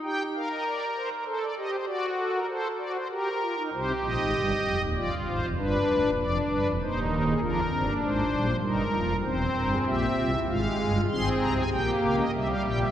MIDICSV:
0, 0, Header, 1, 2, 480
1, 0, Start_track
1, 0, Key_signature, -3, "minor"
1, 0, Tempo, 616016
1, 26, Time_signature, 3, 2, 24, 8
1, 10061, End_track
2, 0, Start_track
2, 0, Title_t, "Pipe organ"
2, 0, Program_c, 0, 19
2, 28, Note_on_c, 0, 79, 86
2, 29, Note_on_c, 0, 67, 66
2, 176, Note_off_c, 0, 67, 0
2, 176, Note_off_c, 0, 79, 0
2, 278, Note_on_c, 0, 70, 59
2, 281, Note_on_c, 0, 77, 72
2, 377, Note_off_c, 0, 77, 0
2, 397, Note_on_c, 0, 75, 75
2, 494, Note_off_c, 0, 75, 0
2, 519, Note_on_c, 0, 74, 77
2, 663, Note_off_c, 0, 74, 0
2, 751, Note_on_c, 0, 72, 67
2, 850, Note_off_c, 0, 72, 0
2, 854, Note_off_c, 0, 70, 0
2, 870, Note_on_c, 0, 70, 82
2, 970, Note_off_c, 0, 70, 0
2, 980, Note_on_c, 0, 69, 66
2, 981, Note_on_c, 0, 72, 73
2, 1085, Note_off_c, 0, 72, 0
2, 1103, Note_on_c, 0, 74, 82
2, 1129, Note_off_c, 0, 69, 0
2, 1205, Note_off_c, 0, 74, 0
2, 1227, Note_on_c, 0, 67, 68
2, 1229, Note_on_c, 0, 75, 79
2, 1328, Note_off_c, 0, 75, 0
2, 1340, Note_on_c, 0, 72, 76
2, 1373, Note_off_c, 0, 67, 0
2, 1443, Note_off_c, 0, 72, 0
2, 1454, Note_on_c, 0, 66, 74
2, 1454, Note_on_c, 0, 74, 91
2, 1604, Note_off_c, 0, 74, 0
2, 1698, Note_on_c, 0, 69, 83
2, 1802, Note_off_c, 0, 69, 0
2, 1815, Note_on_c, 0, 70, 75
2, 1868, Note_off_c, 0, 66, 0
2, 1920, Note_off_c, 0, 70, 0
2, 1935, Note_on_c, 0, 69, 74
2, 1938, Note_on_c, 0, 72, 84
2, 2084, Note_off_c, 0, 69, 0
2, 2087, Note_off_c, 0, 72, 0
2, 2163, Note_on_c, 0, 66, 66
2, 2167, Note_on_c, 0, 74, 79
2, 2274, Note_off_c, 0, 74, 0
2, 2291, Note_on_c, 0, 72, 86
2, 2315, Note_off_c, 0, 66, 0
2, 2396, Note_off_c, 0, 72, 0
2, 2413, Note_on_c, 0, 67, 73
2, 2414, Note_on_c, 0, 70, 88
2, 2562, Note_off_c, 0, 67, 0
2, 2660, Note_on_c, 0, 65, 65
2, 2760, Note_off_c, 0, 65, 0
2, 2779, Note_on_c, 0, 63, 67
2, 2825, Note_off_c, 0, 70, 0
2, 2880, Note_off_c, 0, 63, 0
2, 2907, Note_on_c, 0, 36, 96
2, 2910, Note_on_c, 0, 67, 79
2, 2912, Note_on_c, 0, 72, 85
2, 2914, Note_on_c, 0, 48, 98
2, 3051, Note_off_c, 0, 36, 0
2, 3055, Note_off_c, 0, 72, 0
2, 3057, Note_off_c, 0, 48, 0
2, 3136, Note_on_c, 0, 75, 72
2, 3138, Note_on_c, 0, 34, 89
2, 3140, Note_on_c, 0, 46, 86
2, 3239, Note_off_c, 0, 34, 0
2, 3240, Note_off_c, 0, 46, 0
2, 3260, Note_on_c, 0, 44, 83
2, 3261, Note_on_c, 0, 32, 83
2, 3360, Note_off_c, 0, 44, 0
2, 3361, Note_off_c, 0, 32, 0
2, 3369, Note_on_c, 0, 43, 89
2, 3373, Note_on_c, 0, 31, 89
2, 3519, Note_off_c, 0, 43, 0
2, 3521, Note_off_c, 0, 31, 0
2, 3613, Note_on_c, 0, 29, 72
2, 3614, Note_on_c, 0, 41, 75
2, 3716, Note_off_c, 0, 29, 0
2, 3717, Note_off_c, 0, 41, 0
2, 3728, Note_off_c, 0, 67, 0
2, 3734, Note_on_c, 0, 27, 89
2, 3739, Note_on_c, 0, 39, 86
2, 3754, Note_off_c, 0, 75, 0
2, 3837, Note_off_c, 0, 27, 0
2, 3840, Note_off_c, 0, 39, 0
2, 3863, Note_on_c, 0, 29, 80
2, 3864, Note_on_c, 0, 41, 84
2, 3864, Note_on_c, 0, 74, 72
2, 3866, Note_on_c, 0, 65, 74
2, 3962, Note_off_c, 0, 29, 0
2, 3963, Note_off_c, 0, 41, 0
2, 3990, Note_on_c, 0, 43, 77
2, 3993, Note_on_c, 0, 31, 79
2, 4010, Note_off_c, 0, 74, 0
2, 4086, Note_off_c, 0, 43, 0
2, 4088, Note_off_c, 0, 31, 0
2, 4111, Note_on_c, 0, 32, 82
2, 4111, Note_on_c, 0, 44, 76
2, 4111, Note_on_c, 0, 72, 69
2, 4207, Note_off_c, 0, 32, 0
2, 4207, Note_off_c, 0, 44, 0
2, 4219, Note_on_c, 0, 41, 79
2, 4220, Note_on_c, 0, 29, 80
2, 4255, Note_off_c, 0, 72, 0
2, 4274, Note_off_c, 0, 65, 0
2, 4320, Note_off_c, 0, 41, 0
2, 4321, Note_off_c, 0, 29, 0
2, 4346, Note_on_c, 0, 31, 100
2, 4348, Note_on_c, 0, 71, 79
2, 4350, Note_on_c, 0, 43, 93
2, 4351, Note_on_c, 0, 62, 82
2, 4491, Note_off_c, 0, 31, 0
2, 4494, Note_off_c, 0, 43, 0
2, 4594, Note_on_c, 0, 38, 77
2, 4597, Note_on_c, 0, 26, 75
2, 4689, Note_off_c, 0, 38, 0
2, 4691, Note_off_c, 0, 26, 0
2, 4715, Note_on_c, 0, 39, 73
2, 4717, Note_on_c, 0, 27, 79
2, 4755, Note_off_c, 0, 71, 0
2, 4757, Note_off_c, 0, 62, 0
2, 4809, Note_off_c, 0, 39, 0
2, 4810, Note_off_c, 0, 27, 0
2, 4824, Note_on_c, 0, 41, 89
2, 4826, Note_on_c, 0, 62, 66
2, 4827, Note_on_c, 0, 29, 80
2, 4828, Note_on_c, 0, 74, 70
2, 4970, Note_off_c, 0, 41, 0
2, 4972, Note_off_c, 0, 29, 0
2, 4973, Note_off_c, 0, 74, 0
2, 5050, Note_on_c, 0, 71, 58
2, 5051, Note_on_c, 0, 31, 69
2, 5056, Note_on_c, 0, 43, 73
2, 5156, Note_off_c, 0, 31, 0
2, 5159, Note_off_c, 0, 43, 0
2, 5174, Note_on_c, 0, 41, 81
2, 5181, Note_on_c, 0, 29, 75
2, 5201, Note_off_c, 0, 71, 0
2, 5235, Note_off_c, 0, 62, 0
2, 5278, Note_off_c, 0, 41, 0
2, 5282, Note_off_c, 0, 29, 0
2, 5307, Note_on_c, 0, 27, 80
2, 5308, Note_on_c, 0, 63, 65
2, 5308, Note_on_c, 0, 72, 68
2, 5310, Note_on_c, 0, 39, 80
2, 5454, Note_off_c, 0, 72, 0
2, 5533, Note_on_c, 0, 70, 65
2, 5638, Note_off_c, 0, 70, 0
2, 5662, Note_on_c, 0, 68, 62
2, 5716, Note_off_c, 0, 27, 0
2, 5717, Note_off_c, 0, 39, 0
2, 5717, Note_off_c, 0, 63, 0
2, 5763, Note_off_c, 0, 68, 0
2, 5771, Note_on_c, 0, 41, 63
2, 5771, Note_on_c, 0, 65, 66
2, 5773, Note_on_c, 0, 70, 67
2, 5774, Note_on_c, 0, 29, 60
2, 5776, Note_on_c, 0, 62, 80
2, 5922, Note_off_c, 0, 41, 0
2, 5922, Note_off_c, 0, 65, 0
2, 5924, Note_off_c, 0, 29, 0
2, 5925, Note_off_c, 0, 62, 0
2, 6005, Note_on_c, 0, 31, 58
2, 6006, Note_on_c, 0, 60, 67
2, 6009, Note_on_c, 0, 43, 55
2, 6011, Note_on_c, 0, 62, 54
2, 6115, Note_off_c, 0, 60, 0
2, 6138, Note_on_c, 0, 58, 65
2, 6158, Note_off_c, 0, 31, 0
2, 6161, Note_off_c, 0, 43, 0
2, 6189, Note_off_c, 0, 70, 0
2, 6241, Note_off_c, 0, 58, 0
2, 6255, Note_on_c, 0, 32, 63
2, 6258, Note_on_c, 0, 56, 66
2, 6259, Note_on_c, 0, 72, 62
2, 6260, Note_on_c, 0, 44, 57
2, 6405, Note_off_c, 0, 32, 0
2, 6407, Note_off_c, 0, 56, 0
2, 6409, Note_off_c, 0, 44, 0
2, 6485, Note_on_c, 0, 46, 53
2, 6490, Note_on_c, 0, 34, 51
2, 6491, Note_on_c, 0, 55, 61
2, 6597, Note_off_c, 0, 55, 0
2, 6603, Note_on_c, 0, 53, 67
2, 6635, Note_off_c, 0, 62, 0
2, 6638, Note_off_c, 0, 46, 0
2, 6642, Note_off_c, 0, 34, 0
2, 6672, Note_off_c, 0, 72, 0
2, 6713, Note_off_c, 0, 53, 0
2, 6720, Note_on_c, 0, 55, 69
2, 6720, Note_on_c, 0, 70, 60
2, 6722, Note_on_c, 0, 63, 60
2, 6723, Note_on_c, 0, 43, 59
2, 6725, Note_on_c, 0, 31, 58
2, 6831, Note_off_c, 0, 55, 0
2, 6849, Note_on_c, 0, 56, 64
2, 6876, Note_off_c, 0, 63, 0
2, 6877, Note_off_c, 0, 43, 0
2, 6878, Note_off_c, 0, 31, 0
2, 6956, Note_off_c, 0, 56, 0
2, 6958, Note_on_c, 0, 65, 58
2, 6962, Note_on_c, 0, 29, 60
2, 6962, Note_on_c, 0, 41, 56
2, 6962, Note_on_c, 0, 58, 68
2, 7072, Note_off_c, 0, 58, 0
2, 7089, Note_on_c, 0, 55, 61
2, 7114, Note_off_c, 0, 65, 0
2, 7116, Note_off_c, 0, 29, 0
2, 7116, Note_off_c, 0, 41, 0
2, 7141, Note_off_c, 0, 70, 0
2, 7196, Note_off_c, 0, 55, 0
2, 7201, Note_on_c, 0, 60, 71
2, 7201, Note_on_c, 0, 72, 83
2, 7204, Note_on_c, 0, 40, 64
2, 7205, Note_on_c, 0, 28, 68
2, 7357, Note_off_c, 0, 40, 0
2, 7358, Note_off_c, 0, 28, 0
2, 7439, Note_on_c, 0, 31, 63
2, 7439, Note_on_c, 0, 43, 58
2, 7440, Note_on_c, 0, 70, 67
2, 7551, Note_off_c, 0, 70, 0
2, 7566, Note_on_c, 0, 68, 71
2, 7593, Note_off_c, 0, 31, 0
2, 7593, Note_off_c, 0, 43, 0
2, 7622, Note_off_c, 0, 72, 0
2, 7674, Note_off_c, 0, 68, 0
2, 7684, Note_on_c, 0, 46, 65
2, 7688, Note_on_c, 0, 76, 69
2, 7689, Note_on_c, 0, 67, 79
2, 7690, Note_on_c, 0, 34, 65
2, 7837, Note_off_c, 0, 46, 0
2, 7840, Note_off_c, 0, 34, 0
2, 7840, Note_off_c, 0, 67, 0
2, 7919, Note_on_c, 0, 48, 62
2, 7920, Note_on_c, 0, 36, 59
2, 7923, Note_on_c, 0, 65, 69
2, 8030, Note_off_c, 0, 60, 0
2, 8031, Note_off_c, 0, 65, 0
2, 8051, Note_on_c, 0, 64, 77
2, 8072, Note_off_c, 0, 48, 0
2, 8073, Note_off_c, 0, 36, 0
2, 8102, Note_off_c, 0, 76, 0
2, 8155, Note_off_c, 0, 64, 0
2, 8165, Note_on_c, 0, 77, 68
2, 8166, Note_on_c, 0, 44, 72
2, 8167, Note_on_c, 0, 32, 64
2, 8167, Note_on_c, 0, 56, 72
2, 8168, Note_on_c, 0, 65, 78
2, 8273, Note_off_c, 0, 65, 0
2, 8286, Note_on_c, 0, 67, 75
2, 8316, Note_off_c, 0, 44, 0
2, 8317, Note_off_c, 0, 32, 0
2, 8391, Note_off_c, 0, 67, 0
2, 8400, Note_on_c, 0, 68, 75
2, 8402, Note_on_c, 0, 31, 70
2, 8402, Note_on_c, 0, 43, 61
2, 8508, Note_off_c, 0, 68, 0
2, 8518, Note_on_c, 0, 65, 71
2, 8553, Note_off_c, 0, 31, 0
2, 8553, Note_off_c, 0, 43, 0
2, 8579, Note_off_c, 0, 77, 0
2, 8580, Note_off_c, 0, 56, 0
2, 8627, Note_off_c, 0, 65, 0
2, 8643, Note_on_c, 0, 68, 78
2, 8647, Note_on_c, 0, 84, 94
2, 8648, Note_on_c, 0, 32, 79
2, 8648, Note_on_c, 0, 44, 76
2, 8648, Note_on_c, 0, 60, 79
2, 8797, Note_off_c, 0, 44, 0
2, 8797, Note_off_c, 0, 84, 0
2, 8798, Note_off_c, 0, 32, 0
2, 8882, Note_on_c, 0, 82, 81
2, 8883, Note_on_c, 0, 36, 68
2, 8883, Note_on_c, 0, 48, 69
2, 8989, Note_off_c, 0, 82, 0
2, 9007, Note_on_c, 0, 80, 72
2, 9034, Note_off_c, 0, 36, 0
2, 9035, Note_off_c, 0, 48, 0
2, 9059, Note_off_c, 0, 68, 0
2, 9062, Note_off_c, 0, 60, 0
2, 9112, Note_off_c, 0, 80, 0
2, 9122, Note_on_c, 0, 34, 72
2, 9124, Note_on_c, 0, 46, 74
2, 9124, Note_on_c, 0, 58, 73
2, 9124, Note_on_c, 0, 67, 71
2, 9125, Note_on_c, 0, 79, 81
2, 9275, Note_off_c, 0, 34, 0
2, 9276, Note_off_c, 0, 46, 0
2, 9276, Note_off_c, 0, 79, 0
2, 9364, Note_on_c, 0, 37, 61
2, 9365, Note_on_c, 0, 77, 75
2, 9368, Note_on_c, 0, 49, 63
2, 9472, Note_off_c, 0, 77, 0
2, 9482, Note_on_c, 0, 75, 77
2, 9517, Note_off_c, 0, 37, 0
2, 9520, Note_off_c, 0, 49, 0
2, 9543, Note_off_c, 0, 58, 0
2, 9543, Note_off_c, 0, 67, 0
2, 9591, Note_off_c, 0, 75, 0
2, 9613, Note_on_c, 0, 55, 67
2, 9617, Note_on_c, 0, 48, 71
2, 9618, Note_on_c, 0, 36, 66
2, 9618, Note_on_c, 0, 67, 66
2, 9619, Note_on_c, 0, 76, 76
2, 9722, Note_off_c, 0, 76, 0
2, 9726, Note_on_c, 0, 77, 70
2, 9768, Note_off_c, 0, 48, 0
2, 9769, Note_off_c, 0, 36, 0
2, 9836, Note_off_c, 0, 77, 0
2, 9849, Note_on_c, 0, 34, 64
2, 9851, Note_on_c, 0, 46, 59
2, 9856, Note_on_c, 0, 79, 72
2, 9964, Note_off_c, 0, 79, 0
2, 9964, Note_on_c, 0, 76, 70
2, 10006, Note_off_c, 0, 34, 0
2, 10007, Note_off_c, 0, 46, 0
2, 10036, Note_off_c, 0, 55, 0
2, 10040, Note_off_c, 0, 67, 0
2, 10061, Note_off_c, 0, 76, 0
2, 10061, End_track
0, 0, End_of_file